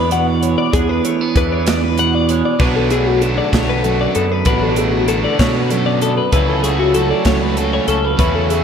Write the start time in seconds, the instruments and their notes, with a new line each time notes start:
Already playing: picked electric bass E2, clean electric guitar E2 E3 G#3 B3 D4 B4
0.11 clean electric guitar B2 F#5, closed hi-hat
0.27 clean electric guitar D5
0.43 clean electric guitar G#3 C#5, closed hi-hat
0.58 clean electric guitar D5
0.73 picked electric bass E2, clean electric guitar E2 G#3 B3 D4 G#4, kick, closed hi-hat
0.89 clean electric guitar B4
1.05 clean electric guitar A3 C#5, closed hi-hat
1.21 clean electric guitar B3 B4
1.36 picked electric bass E2, clean electric guitar E3 D4 B4, kick, closed hi-hat
1.52 clean electric guitar C#5
1.67 clean electric guitar B3 D5, snare, closed hi-hat
1.84 clean electric guitar B4
1.98 clean electric guitar B2 F#5, closed hi-hat
2.15 clean electric guitar D5
2.29 clean electric guitar G#3 C#5, closed hi-hat
2.45 clean electric guitar D5
2.60 picked electric bass B1, clean electric guitar B2 D4 B4, overdriven electric guitar F#3 B3 D4 F#4, kick, crash
2.76 clean electric guitar A4
2.90 overdriven electric guitar F#3 B3 D4 F#4, clean electric guitar A3 G#4, closed hi-hat
3.07 clean electric guitar F#4
3.21 clean electric guitar D3 A4, overdriven electric guitar F#3 B3 D4 F#4, closed hi-hat
3.38 clean electric guitar D5
3.52 picked electric bass B1, overdriven electric guitar F#3 B3 D4 F#4, clean electric guitar C#5, kick, snare, closed hi-hat
3.69 clean electric guitar B4
3.84 clean electric guitar F#2 A4, overdriven electric guitar F#3 B3 D4 F#4, closed hi-hat
4.01 clean electric guitar D5
4.15 picked electric bass F#2, clean electric guitar B3 A4, closed hi-hat
4.32 clean electric guitar B4
4.45 picked electric bass A1, clean electric guitar B2 D4 B4, overdriven electric guitar F#3 B3 D4 F#4, kick, closed hi-hat
4.63 clean electric guitar A4
4.76 overdriven electric guitar F#3 B3 D4 F#4, clean electric guitar A3 G#4, closed hi-hat
4.93 clean electric guitar F#4
5.08 clean electric guitar D3 A4, overdriven electric guitar F#3 B3 D4 F#4, closed hi-hat
5.24 clean electric guitar D5
5.39 picked electric bass B2, overdriven electric guitar F#3 B3 D4 F#4, clean electric guitar C#5, kick, snare, closed hi-hat
5.56 clean electric guitar B4
5.70 clean electric guitar F#2 A4, overdriven electric guitar F#3 B3 D4 F#4, closed hi-hat
5.86 clean electric guitar D5
6.02 clean electric guitar B3 A4, closed hi-hat
6.17 clean electric guitar B4
6.32 picked electric bass C#2, clean electric guitar C#3 E4 B4, overdriven electric guitar F#3 A3 C#4 F#4, kick, closed hi-hat
6.49 clean electric guitar A4
6.63 overdriven electric guitar F#3 A3 C#4 F#4, clean electric guitar A3 G#4, closed hi-hat
6.79 clean electric guitar F#4
6.94 overdriven electric guitar F#3 A3 C#4 F#4, clean electric guitar F#3 A4, closed hi-hat
7.11 clean electric guitar D5
7.25 picked electric bass C#2, overdriven electric guitar F#3 A3 C#4 F#4, clean electric guitar C#5, kick, snare, closed hi-hat
7.42 clean electric guitar B4
7.57 clean electric guitar C#3 A4, overdriven electric guitar F#3 A3 C#4 F#4, closed hi-hat
7.73 clean electric guitar C#5
7.88 picked electric bass C#2, clean electric guitar C#4 A4, closed hi-hat
8.05 clean electric guitar B4
8.18 picked electric bass E2, clean electric guitar C#3 E4 B4, overdriven electric guitar F#3 A3 C#4 F#4, kick, closed hi-hat
8.36 clean electric guitar A4
8.49 overdriven electric guitar F#3 A3 C#4 F#4, clean electric guitar A3 G#4, closed hi-hat